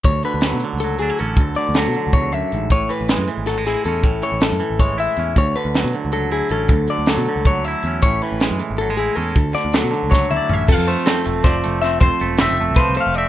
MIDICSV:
0, 0, Header, 1, 6, 480
1, 0, Start_track
1, 0, Tempo, 379507
1, 71, Time_signature, 7, 3, 24, 8
1, 16803, End_track
2, 0, Start_track
2, 0, Title_t, "Clean electric guitar"
2, 0, Program_c, 0, 27
2, 12815, Note_on_c, 0, 73, 76
2, 13057, Note_off_c, 0, 73, 0
2, 13110, Note_on_c, 0, 74, 67
2, 13326, Note_off_c, 0, 74, 0
2, 13326, Note_on_c, 0, 76, 70
2, 13564, Note_off_c, 0, 76, 0
2, 13564, Note_on_c, 0, 77, 86
2, 14493, Note_on_c, 0, 74, 88
2, 14530, Note_off_c, 0, 77, 0
2, 14980, Note_off_c, 0, 74, 0
2, 14989, Note_on_c, 0, 72, 71
2, 15052, Note_off_c, 0, 72, 0
2, 15210, Note_on_c, 0, 72, 91
2, 15697, Note_on_c, 0, 76, 92
2, 15698, Note_off_c, 0, 72, 0
2, 16157, Note_on_c, 0, 72, 89
2, 16180, Note_off_c, 0, 76, 0
2, 16404, Note_off_c, 0, 72, 0
2, 16449, Note_on_c, 0, 77, 85
2, 16666, Note_off_c, 0, 77, 0
2, 16671, Note_on_c, 0, 76, 78
2, 16803, Note_off_c, 0, 76, 0
2, 16803, End_track
3, 0, Start_track
3, 0, Title_t, "Clean electric guitar"
3, 0, Program_c, 1, 27
3, 63, Note_on_c, 1, 73, 75
3, 307, Note_off_c, 1, 73, 0
3, 315, Note_on_c, 1, 71, 70
3, 793, Note_off_c, 1, 71, 0
3, 1013, Note_on_c, 1, 69, 65
3, 1252, Note_off_c, 1, 69, 0
3, 1257, Note_on_c, 1, 68, 75
3, 1504, Note_off_c, 1, 68, 0
3, 1504, Note_on_c, 1, 69, 67
3, 1978, Note_on_c, 1, 74, 66
3, 1987, Note_off_c, 1, 69, 0
3, 2215, Note_on_c, 1, 69, 75
3, 2224, Note_off_c, 1, 74, 0
3, 2697, Note_on_c, 1, 73, 65
3, 2702, Note_off_c, 1, 69, 0
3, 2943, Note_off_c, 1, 73, 0
3, 2943, Note_on_c, 1, 76, 67
3, 3426, Note_off_c, 1, 76, 0
3, 3437, Note_on_c, 1, 73, 78
3, 3673, Note_on_c, 1, 71, 72
3, 3674, Note_off_c, 1, 73, 0
3, 4152, Note_off_c, 1, 71, 0
3, 4391, Note_on_c, 1, 69, 67
3, 4631, Note_off_c, 1, 69, 0
3, 4636, Note_on_c, 1, 68, 74
3, 4870, Note_off_c, 1, 68, 0
3, 4875, Note_on_c, 1, 69, 70
3, 5353, Note_off_c, 1, 69, 0
3, 5355, Note_on_c, 1, 73, 67
3, 5593, Note_off_c, 1, 73, 0
3, 5595, Note_on_c, 1, 69, 73
3, 6067, Note_on_c, 1, 73, 67
3, 6074, Note_off_c, 1, 69, 0
3, 6310, Note_off_c, 1, 73, 0
3, 6323, Note_on_c, 1, 76, 67
3, 6799, Note_off_c, 1, 76, 0
3, 6806, Note_on_c, 1, 73, 78
3, 7028, Note_on_c, 1, 71, 70
3, 7040, Note_off_c, 1, 73, 0
3, 7512, Note_off_c, 1, 71, 0
3, 7751, Note_on_c, 1, 69, 65
3, 7992, Note_off_c, 1, 69, 0
3, 7997, Note_on_c, 1, 68, 65
3, 8235, Note_off_c, 1, 68, 0
3, 8240, Note_on_c, 1, 69, 67
3, 8720, Note_off_c, 1, 69, 0
3, 8727, Note_on_c, 1, 74, 71
3, 8961, Note_on_c, 1, 69, 77
3, 8963, Note_off_c, 1, 74, 0
3, 9441, Note_off_c, 1, 69, 0
3, 9444, Note_on_c, 1, 73, 70
3, 9674, Note_off_c, 1, 73, 0
3, 9674, Note_on_c, 1, 76, 72
3, 10145, Note_off_c, 1, 76, 0
3, 10150, Note_on_c, 1, 73, 79
3, 10401, Note_off_c, 1, 73, 0
3, 10401, Note_on_c, 1, 71, 66
3, 10882, Note_off_c, 1, 71, 0
3, 11108, Note_on_c, 1, 69, 69
3, 11343, Note_off_c, 1, 69, 0
3, 11348, Note_on_c, 1, 68, 73
3, 11580, Note_off_c, 1, 68, 0
3, 11580, Note_on_c, 1, 69, 73
3, 12073, Note_off_c, 1, 69, 0
3, 12074, Note_on_c, 1, 74, 66
3, 12315, Note_on_c, 1, 69, 70
3, 12319, Note_off_c, 1, 74, 0
3, 12786, Note_on_c, 1, 73, 65
3, 12800, Note_off_c, 1, 69, 0
3, 13030, Note_off_c, 1, 73, 0
3, 13035, Note_on_c, 1, 76, 68
3, 13515, Note_on_c, 1, 69, 80
3, 13519, Note_off_c, 1, 76, 0
3, 13759, Note_off_c, 1, 69, 0
3, 13760, Note_on_c, 1, 72, 68
3, 13987, Note_on_c, 1, 69, 73
3, 14001, Note_off_c, 1, 72, 0
3, 14470, Note_on_c, 1, 72, 73
3, 14474, Note_off_c, 1, 69, 0
3, 14940, Note_off_c, 1, 72, 0
3, 14945, Note_on_c, 1, 76, 76
3, 15180, Note_off_c, 1, 76, 0
3, 15185, Note_on_c, 1, 72, 86
3, 15671, Note_off_c, 1, 72, 0
3, 16142, Note_on_c, 1, 71, 70
3, 16389, Note_off_c, 1, 71, 0
3, 16405, Note_on_c, 1, 72, 78
3, 16634, Note_off_c, 1, 72, 0
3, 16634, Note_on_c, 1, 74, 75
3, 16803, Note_off_c, 1, 74, 0
3, 16803, End_track
4, 0, Start_track
4, 0, Title_t, "Clean electric guitar"
4, 0, Program_c, 2, 27
4, 67, Note_on_c, 2, 38, 62
4, 314, Note_on_c, 2, 50, 59
4, 579, Note_on_c, 2, 54, 53
4, 805, Note_off_c, 2, 50, 0
4, 810, Note_on_c, 2, 50, 59
4, 1044, Note_off_c, 2, 54, 0
4, 1062, Note_on_c, 2, 54, 51
4, 1290, Note_on_c, 2, 62, 49
4, 1388, Note_off_c, 2, 62, 0
4, 1388, Note_on_c, 2, 64, 45
4, 1513, Note_on_c, 2, 61, 51
4, 1748, Note_off_c, 2, 38, 0
4, 1749, Note_off_c, 2, 64, 0
4, 1761, Note_on_c, 2, 38, 63
4, 1799, Note_off_c, 2, 61, 0
4, 1983, Note_off_c, 2, 50, 0
4, 1998, Note_on_c, 2, 50, 58
4, 2234, Note_off_c, 2, 54, 0
4, 2250, Note_on_c, 2, 54, 52
4, 2471, Note_off_c, 2, 50, 0
4, 2486, Note_on_c, 2, 50, 61
4, 2714, Note_off_c, 2, 38, 0
4, 2719, Note_on_c, 2, 40, 54
4, 2947, Note_off_c, 2, 40, 0
4, 2952, Note_on_c, 2, 42, 58
4, 3191, Note_off_c, 2, 42, 0
4, 3213, Note_on_c, 2, 44, 54
4, 3438, Note_off_c, 2, 50, 0
4, 3439, Note_on_c, 2, 45, 69
4, 3440, Note_off_c, 2, 54, 0
4, 3441, Note_off_c, 2, 44, 0
4, 3659, Note_on_c, 2, 52, 59
4, 3921, Note_on_c, 2, 56, 56
4, 4141, Note_off_c, 2, 52, 0
4, 4146, Note_on_c, 2, 52, 55
4, 4395, Note_off_c, 2, 56, 0
4, 4400, Note_on_c, 2, 54, 52
4, 4523, Note_off_c, 2, 54, 0
4, 4523, Note_on_c, 2, 56, 44
4, 4641, Note_on_c, 2, 64, 53
4, 4906, Note_on_c, 2, 61, 46
4, 5084, Note_off_c, 2, 45, 0
4, 5099, Note_on_c, 2, 45, 63
4, 5118, Note_off_c, 2, 56, 0
4, 5336, Note_off_c, 2, 52, 0
4, 5341, Note_on_c, 2, 52, 53
4, 5811, Note_off_c, 2, 52, 0
4, 5816, Note_on_c, 2, 52, 61
4, 6080, Note_on_c, 2, 56, 56
4, 6293, Note_off_c, 2, 64, 0
4, 6298, Note_on_c, 2, 64, 56
4, 6560, Note_off_c, 2, 61, 0
4, 6565, Note_on_c, 2, 61, 50
4, 6769, Note_off_c, 2, 56, 0
4, 6788, Note_off_c, 2, 45, 0
4, 6790, Note_on_c, 2, 38, 62
4, 6828, Note_off_c, 2, 52, 0
4, 6828, Note_off_c, 2, 61, 0
4, 6828, Note_off_c, 2, 64, 0
4, 7042, Note_on_c, 2, 50, 56
4, 7289, Note_on_c, 2, 54, 48
4, 7517, Note_off_c, 2, 50, 0
4, 7522, Note_on_c, 2, 50, 59
4, 7738, Note_off_c, 2, 54, 0
4, 7753, Note_on_c, 2, 54, 58
4, 7992, Note_on_c, 2, 64, 53
4, 8253, Note_on_c, 2, 61, 48
4, 8464, Note_off_c, 2, 38, 0
4, 8479, Note_on_c, 2, 38, 65
4, 8517, Note_off_c, 2, 61, 0
4, 8517, Note_off_c, 2, 64, 0
4, 8721, Note_off_c, 2, 50, 0
4, 8738, Note_on_c, 2, 50, 61
4, 8954, Note_off_c, 2, 54, 0
4, 8969, Note_on_c, 2, 54, 55
4, 9201, Note_off_c, 2, 50, 0
4, 9216, Note_on_c, 2, 50, 58
4, 9445, Note_off_c, 2, 54, 0
4, 9462, Note_on_c, 2, 54, 54
4, 9713, Note_on_c, 2, 64, 57
4, 9953, Note_on_c, 2, 61, 51
4, 10162, Note_off_c, 2, 38, 0
4, 10170, Note_off_c, 2, 50, 0
4, 10172, Note_off_c, 2, 54, 0
4, 10186, Note_on_c, 2, 45, 68
4, 10413, Note_on_c, 2, 52, 64
4, 10657, Note_on_c, 2, 56, 56
4, 10879, Note_off_c, 2, 52, 0
4, 10884, Note_on_c, 2, 52, 61
4, 11130, Note_off_c, 2, 56, 0
4, 11142, Note_on_c, 2, 54, 51
4, 11180, Note_off_c, 2, 64, 0
4, 11256, Note_off_c, 2, 54, 0
4, 11256, Note_on_c, 2, 56, 42
4, 11371, Note_on_c, 2, 64, 51
4, 11587, Note_off_c, 2, 61, 0
4, 11592, Note_on_c, 2, 61, 46
4, 11809, Note_off_c, 2, 61, 0
4, 11827, Note_on_c, 2, 38, 68
4, 11850, Note_off_c, 2, 56, 0
4, 11856, Note_off_c, 2, 45, 0
4, 11865, Note_off_c, 2, 52, 0
4, 11865, Note_off_c, 2, 64, 0
4, 12057, Note_on_c, 2, 50, 61
4, 12320, Note_on_c, 2, 54, 54
4, 12518, Note_off_c, 2, 50, 0
4, 12533, Note_on_c, 2, 50, 62
4, 12756, Note_off_c, 2, 54, 0
4, 12771, Note_on_c, 2, 54, 51
4, 13040, Note_on_c, 2, 64, 47
4, 13275, Note_on_c, 2, 61, 45
4, 13490, Note_off_c, 2, 61, 0
4, 13493, Note_off_c, 2, 64, 0
4, 13507, Note_off_c, 2, 54, 0
4, 13508, Note_off_c, 2, 50, 0
4, 13509, Note_off_c, 2, 38, 0
4, 13514, Note_on_c, 2, 41, 74
4, 13752, Note_on_c, 2, 57, 57
4, 13988, Note_on_c, 2, 60, 59
4, 14233, Note_off_c, 2, 57, 0
4, 14238, Note_on_c, 2, 57, 59
4, 14481, Note_on_c, 2, 53, 61
4, 14714, Note_off_c, 2, 57, 0
4, 14719, Note_on_c, 2, 57, 58
4, 14973, Note_off_c, 2, 60, 0
4, 14978, Note_on_c, 2, 60, 53
4, 15186, Note_off_c, 2, 41, 0
4, 15191, Note_on_c, 2, 41, 70
4, 15441, Note_off_c, 2, 57, 0
4, 15446, Note_on_c, 2, 57, 62
4, 15682, Note_off_c, 2, 60, 0
4, 15687, Note_on_c, 2, 60, 60
4, 15937, Note_off_c, 2, 57, 0
4, 15942, Note_on_c, 2, 57, 64
4, 16173, Note_off_c, 2, 53, 0
4, 16178, Note_on_c, 2, 53, 63
4, 16396, Note_off_c, 2, 57, 0
4, 16401, Note_on_c, 2, 57, 58
4, 16661, Note_off_c, 2, 60, 0
4, 16667, Note_on_c, 2, 60, 55
4, 16803, Note_off_c, 2, 41, 0
4, 16803, Note_off_c, 2, 53, 0
4, 16803, Note_off_c, 2, 57, 0
4, 16803, Note_off_c, 2, 60, 0
4, 16803, End_track
5, 0, Start_track
5, 0, Title_t, "Picked electric bass"
5, 0, Program_c, 3, 34
5, 53, Note_on_c, 3, 38, 76
5, 281, Note_off_c, 3, 38, 0
5, 433, Note_on_c, 3, 38, 67
5, 652, Note_off_c, 3, 38, 0
5, 677, Note_on_c, 3, 47, 74
5, 784, Note_off_c, 3, 47, 0
5, 928, Note_on_c, 3, 37, 67
5, 1297, Note_off_c, 3, 37, 0
5, 1297, Note_on_c, 3, 38, 73
5, 1395, Note_off_c, 3, 38, 0
5, 1530, Note_on_c, 3, 33, 71
5, 1723, Note_off_c, 3, 33, 0
5, 1731, Note_on_c, 3, 38, 74
5, 1960, Note_off_c, 3, 38, 0
5, 2135, Note_on_c, 3, 38, 72
5, 2343, Note_off_c, 3, 38, 0
5, 2377, Note_on_c, 3, 47, 72
5, 2475, Note_off_c, 3, 47, 0
5, 2616, Note_on_c, 3, 37, 68
5, 2960, Note_off_c, 3, 37, 0
5, 2960, Note_on_c, 3, 38, 78
5, 3065, Note_off_c, 3, 38, 0
5, 3199, Note_on_c, 3, 33, 78
5, 3415, Note_off_c, 3, 33, 0
5, 3425, Note_on_c, 3, 33, 79
5, 3647, Note_off_c, 3, 33, 0
5, 3805, Note_on_c, 3, 33, 69
5, 4018, Note_off_c, 3, 33, 0
5, 4027, Note_on_c, 3, 42, 81
5, 4138, Note_off_c, 3, 42, 0
5, 4271, Note_on_c, 3, 32, 71
5, 4633, Note_off_c, 3, 32, 0
5, 4633, Note_on_c, 3, 33, 76
5, 4742, Note_off_c, 3, 33, 0
5, 4875, Note_on_c, 3, 40, 73
5, 5094, Note_off_c, 3, 40, 0
5, 5105, Note_on_c, 3, 33, 73
5, 5328, Note_off_c, 3, 33, 0
5, 5466, Note_on_c, 3, 33, 67
5, 5689, Note_off_c, 3, 33, 0
5, 5720, Note_on_c, 3, 42, 77
5, 5826, Note_off_c, 3, 42, 0
5, 5948, Note_on_c, 3, 32, 66
5, 6305, Note_off_c, 3, 32, 0
5, 6305, Note_on_c, 3, 33, 71
5, 6419, Note_off_c, 3, 33, 0
5, 6545, Note_on_c, 3, 40, 71
5, 6770, Note_off_c, 3, 40, 0
5, 6786, Note_on_c, 3, 38, 79
5, 7010, Note_off_c, 3, 38, 0
5, 7147, Note_on_c, 3, 38, 62
5, 7371, Note_off_c, 3, 38, 0
5, 7394, Note_on_c, 3, 47, 70
5, 7504, Note_off_c, 3, 47, 0
5, 7651, Note_on_c, 3, 37, 74
5, 7999, Note_off_c, 3, 37, 0
5, 7999, Note_on_c, 3, 38, 75
5, 8108, Note_off_c, 3, 38, 0
5, 8230, Note_on_c, 3, 33, 78
5, 8454, Note_off_c, 3, 33, 0
5, 8463, Note_on_c, 3, 38, 76
5, 8690, Note_off_c, 3, 38, 0
5, 8832, Note_on_c, 3, 38, 68
5, 9055, Note_off_c, 3, 38, 0
5, 9076, Note_on_c, 3, 47, 77
5, 9188, Note_off_c, 3, 47, 0
5, 9309, Note_on_c, 3, 37, 65
5, 9680, Note_off_c, 3, 37, 0
5, 9680, Note_on_c, 3, 38, 73
5, 9790, Note_off_c, 3, 38, 0
5, 9913, Note_on_c, 3, 40, 73
5, 10137, Note_off_c, 3, 40, 0
5, 10154, Note_on_c, 3, 33, 76
5, 10378, Note_off_c, 3, 33, 0
5, 10527, Note_on_c, 3, 33, 66
5, 10745, Note_off_c, 3, 33, 0
5, 10763, Note_on_c, 3, 42, 76
5, 10873, Note_off_c, 3, 42, 0
5, 11011, Note_on_c, 3, 32, 76
5, 11381, Note_off_c, 3, 32, 0
5, 11381, Note_on_c, 3, 33, 78
5, 11483, Note_off_c, 3, 33, 0
5, 11598, Note_on_c, 3, 40, 73
5, 11821, Note_off_c, 3, 40, 0
5, 11837, Note_on_c, 3, 38, 77
5, 12060, Note_off_c, 3, 38, 0
5, 12204, Note_on_c, 3, 38, 69
5, 12424, Note_off_c, 3, 38, 0
5, 12445, Note_on_c, 3, 47, 74
5, 12555, Note_off_c, 3, 47, 0
5, 12687, Note_on_c, 3, 37, 68
5, 13033, Note_off_c, 3, 37, 0
5, 13033, Note_on_c, 3, 38, 76
5, 13148, Note_off_c, 3, 38, 0
5, 13283, Note_on_c, 3, 33, 74
5, 13503, Note_off_c, 3, 33, 0
5, 13514, Note_on_c, 3, 29, 89
5, 13625, Note_off_c, 3, 29, 0
5, 13633, Note_on_c, 3, 41, 78
5, 13858, Note_off_c, 3, 41, 0
5, 14251, Note_on_c, 3, 28, 85
5, 14464, Note_off_c, 3, 28, 0
5, 14472, Note_on_c, 3, 29, 79
5, 14696, Note_off_c, 3, 29, 0
5, 14749, Note_on_c, 3, 29, 85
5, 15175, Note_off_c, 3, 29, 0
5, 15189, Note_on_c, 3, 28, 88
5, 15304, Note_off_c, 3, 28, 0
5, 15446, Note_on_c, 3, 28, 75
5, 15662, Note_off_c, 3, 28, 0
5, 15687, Note_on_c, 3, 28, 91
5, 15793, Note_off_c, 3, 28, 0
5, 15823, Note_on_c, 3, 29, 83
5, 15921, Note_off_c, 3, 29, 0
5, 15953, Note_on_c, 3, 29, 95
5, 16047, Note_off_c, 3, 29, 0
5, 16064, Note_on_c, 3, 36, 79
5, 16272, Note_off_c, 3, 36, 0
5, 16307, Note_on_c, 3, 36, 78
5, 16403, Note_off_c, 3, 36, 0
5, 16527, Note_on_c, 3, 29, 86
5, 16803, Note_off_c, 3, 29, 0
5, 16803, End_track
6, 0, Start_track
6, 0, Title_t, "Drums"
6, 45, Note_on_c, 9, 42, 66
6, 57, Note_on_c, 9, 36, 93
6, 171, Note_off_c, 9, 42, 0
6, 183, Note_off_c, 9, 36, 0
6, 288, Note_on_c, 9, 42, 48
6, 414, Note_off_c, 9, 42, 0
6, 517, Note_on_c, 9, 42, 62
6, 530, Note_on_c, 9, 38, 88
6, 644, Note_off_c, 9, 42, 0
6, 656, Note_off_c, 9, 38, 0
6, 756, Note_on_c, 9, 42, 55
6, 882, Note_off_c, 9, 42, 0
6, 1010, Note_on_c, 9, 42, 70
6, 1136, Note_off_c, 9, 42, 0
6, 1245, Note_on_c, 9, 42, 57
6, 1371, Note_off_c, 9, 42, 0
6, 1498, Note_on_c, 9, 42, 54
6, 1624, Note_off_c, 9, 42, 0
6, 1726, Note_on_c, 9, 42, 74
6, 1729, Note_on_c, 9, 36, 96
6, 1853, Note_off_c, 9, 42, 0
6, 1856, Note_off_c, 9, 36, 0
6, 1958, Note_on_c, 9, 42, 50
6, 2084, Note_off_c, 9, 42, 0
6, 2201, Note_on_c, 9, 42, 62
6, 2213, Note_on_c, 9, 38, 88
6, 2327, Note_off_c, 9, 42, 0
6, 2340, Note_off_c, 9, 38, 0
6, 2448, Note_on_c, 9, 42, 53
6, 2575, Note_off_c, 9, 42, 0
6, 2691, Note_on_c, 9, 42, 64
6, 2696, Note_on_c, 9, 36, 85
6, 2818, Note_off_c, 9, 42, 0
6, 2822, Note_off_c, 9, 36, 0
6, 2935, Note_on_c, 9, 42, 52
6, 3062, Note_off_c, 9, 42, 0
6, 3189, Note_on_c, 9, 42, 54
6, 3315, Note_off_c, 9, 42, 0
6, 3419, Note_on_c, 9, 36, 90
6, 3422, Note_on_c, 9, 42, 63
6, 3546, Note_off_c, 9, 36, 0
6, 3549, Note_off_c, 9, 42, 0
6, 3672, Note_on_c, 9, 42, 51
6, 3798, Note_off_c, 9, 42, 0
6, 3899, Note_on_c, 9, 42, 70
6, 3912, Note_on_c, 9, 38, 85
6, 4026, Note_off_c, 9, 42, 0
6, 4038, Note_off_c, 9, 38, 0
6, 4143, Note_on_c, 9, 42, 50
6, 4270, Note_off_c, 9, 42, 0
6, 4379, Note_on_c, 9, 42, 71
6, 4391, Note_on_c, 9, 38, 30
6, 4505, Note_off_c, 9, 42, 0
6, 4518, Note_off_c, 9, 38, 0
6, 4624, Note_on_c, 9, 42, 54
6, 4636, Note_on_c, 9, 38, 31
6, 4750, Note_off_c, 9, 42, 0
6, 4763, Note_off_c, 9, 38, 0
6, 4861, Note_on_c, 9, 42, 55
6, 4987, Note_off_c, 9, 42, 0
6, 5104, Note_on_c, 9, 36, 91
6, 5106, Note_on_c, 9, 42, 74
6, 5231, Note_off_c, 9, 36, 0
6, 5233, Note_off_c, 9, 42, 0
6, 5346, Note_on_c, 9, 42, 54
6, 5473, Note_off_c, 9, 42, 0
6, 5574, Note_on_c, 9, 42, 66
6, 5587, Note_on_c, 9, 38, 95
6, 5701, Note_off_c, 9, 42, 0
6, 5713, Note_off_c, 9, 38, 0
6, 5819, Note_on_c, 9, 42, 50
6, 5946, Note_off_c, 9, 42, 0
6, 6064, Note_on_c, 9, 36, 86
6, 6066, Note_on_c, 9, 42, 68
6, 6190, Note_off_c, 9, 36, 0
6, 6192, Note_off_c, 9, 42, 0
6, 6298, Note_on_c, 9, 42, 52
6, 6424, Note_off_c, 9, 42, 0
6, 6535, Note_on_c, 9, 42, 51
6, 6661, Note_off_c, 9, 42, 0
6, 6782, Note_on_c, 9, 36, 90
6, 6783, Note_on_c, 9, 42, 70
6, 6909, Note_off_c, 9, 36, 0
6, 6909, Note_off_c, 9, 42, 0
6, 7034, Note_on_c, 9, 42, 43
6, 7160, Note_off_c, 9, 42, 0
6, 7264, Note_on_c, 9, 42, 61
6, 7277, Note_on_c, 9, 38, 82
6, 7390, Note_off_c, 9, 42, 0
6, 7403, Note_off_c, 9, 38, 0
6, 7502, Note_on_c, 9, 42, 48
6, 7628, Note_off_c, 9, 42, 0
6, 7741, Note_on_c, 9, 42, 59
6, 7867, Note_off_c, 9, 42, 0
6, 7986, Note_on_c, 9, 42, 55
6, 8112, Note_off_c, 9, 42, 0
6, 8211, Note_on_c, 9, 42, 52
6, 8337, Note_off_c, 9, 42, 0
6, 8455, Note_on_c, 9, 42, 68
6, 8463, Note_on_c, 9, 36, 96
6, 8582, Note_off_c, 9, 42, 0
6, 8589, Note_off_c, 9, 36, 0
6, 8695, Note_on_c, 9, 42, 47
6, 8821, Note_off_c, 9, 42, 0
6, 8933, Note_on_c, 9, 42, 66
6, 8945, Note_on_c, 9, 38, 90
6, 9059, Note_off_c, 9, 42, 0
6, 9072, Note_off_c, 9, 38, 0
6, 9176, Note_on_c, 9, 42, 58
6, 9302, Note_off_c, 9, 42, 0
6, 9420, Note_on_c, 9, 42, 73
6, 9427, Note_on_c, 9, 36, 92
6, 9547, Note_off_c, 9, 42, 0
6, 9554, Note_off_c, 9, 36, 0
6, 9668, Note_on_c, 9, 42, 59
6, 9794, Note_off_c, 9, 42, 0
6, 9900, Note_on_c, 9, 42, 53
6, 10026, Note_off_c, 9, 42, 0
6, 10143, Note_on_c, 9, 42, 74
6, 10154, Note_on_c, 9, 36, 90
6, 10269, Note_off_c, 9, 42, 0
6, 10280, Note_off_c, 9, 36, 0
6, 10393, Note_on_c, 9, 42, 51
6, 10519, Note_off_c, 9, 42, 0
6, 10628, Note_on_c, 9, 42, 67
6, 10640, Note_on_c, 9, 38, 83
6, 10754, Note_off_c, 9, 42, 0
6, 10767, Note_off_c, 9, 38, 0
6, 10869, Note_on_c, 9, 42, 52
6, 10996, Note_off_c, 9, 42, 0
6, 11107, Note_on_c, 9, 42, 69
6, 11234, Note_off_c, 9, 42, 0
6, 11347, Note_on_c, 9, 42, 54
6, 11473, Note_off_c, 9, 42, 0
6, 11592, Note_on_c, 9, 42, 50
6, 11718, Note_off_c, 9, 42, 0
6, 11832, Note_on_c, 9, 42, 68
6, 11836, Note_on_c, 9, 36, 89
6, 11959, Note_off_c, 9, 42, 0
6, 11962, Note_off_c, 9, 36, 0
6, 12078, Note_on_c, 9, 42, 48
6, 12090, Note_on_c, 9, 38, 26
6, 12204, Note_off_c, 9, 42, 0
6, 12217, Note_off_c, 9, 38, 0
6, 12309, Note_on_c, 9, 42, 63
6, 12322, Note_on_c, 9, 38, 88
6, 12436, Note_off_c, 9, 42, 0
6, 12448, Note_off_c, 9, 38, 0
6, 12566, Note_on_c, 9, 42, 50
6, 12692, Note_off_c, 9, 42, 0
6, 12797, Note_on_c, 9, 36, 90
6, 12815, Note_on_c, 9, 38, 46
6, 12923, Note_off_c, 9, 36, 0
6, 12941, Note_off_c, 9, 38, 0
6, 13039, Note_on_c, 9, 47, 53
6, 13166, Note_off_c, 9, 47, 0
6, 13273, Note_on_c, 9, 43, 72
6, 13399, Note_off_c, 9, 43, 0
6, 13514, Note_on_c, 9, 36, 103
6, 13521, Note_on_c, 9, 49, 96
6, 13640, Note_off_c, 9, 36, 0
6, 13647, Note_off_c, 9, 49, 0
6, 13761, Note_on_c, 9, 42, 56
6, 13888, Note_off_c, 9, 42, 0
6, 13989, Note_on_c, 9, 42, 81
6, 14002, Note_on_c, 9, 38, 91
6, 14116, Note_off_c, 9, 42, 0
6, 14128, Note_off_c, 9, 38, 0
6, 14222, Note_on_c, 9, 42, 63
6, 14348, Note_off_c, 9, 42, 0
6, 14468, Note_on_c, 9, 42, 83
6, 14472, Note_on_c, 9, 36, 91
6, 14481, Note_on_c, 9, 38, 31
6, 14595, Note_off_c, 9, 42, 0
6, 14598, Note_off_c, 9, 36, 0
6, 14607, Note_off_c, 9, 38, 0
6, 14716, Note_on_c, 9, 42, 64
6, 14843, Note_off_c, 9, 42, 0
6, 14957, Note_on_c, 9, 42, 60
6, 14970, Note_on_c, 9, 38, 33
6, 15084, Note_off_c, 9, 42, 0
6, 15096, Note_off_c, 9, 38, 0
6, 15192, Note_on_c, 9, 36, 97
6, 15193, Note_on_c, 9, 42, 72
6, 15318, Note_off_c, 9, 36, 0
6, 15319, Note_off_c, 9, 42, 0
6, 15425, Note_on_c, 9, 42, 54
6, 15552, Note_off_c, 9, 42, 0
6, 15652, Note_on_c, 9, 42, 77
6, 15665, Note_on_c, 9, 38, 94
6, 15778, Note_off_c, 9, 42, 0
6, 15791, Note_off_c, 9, 38, 0
6, 15898, Note_on_c, 9, 42, 55
6, 16025, Note_off_c, 9, 42, 0
6, 16133, Note_on_c, 9, 42, 73
6, 16142, Note_on_c, 9, 36, 97
6, 16260, Note_off_c, 9, 42, 0
6, 16268, Note_off_c, 9, 36, 0
6, 16371, Note_on_c, 9, 42, 66
6, 16498, Note_off_c, 9, 42, 0
6, 16620, Note_on_c, 9, 42, 67
6, 16747, Note_off_c, 9, 42, 0
6, 16803, End_track
0, 0, End_of_file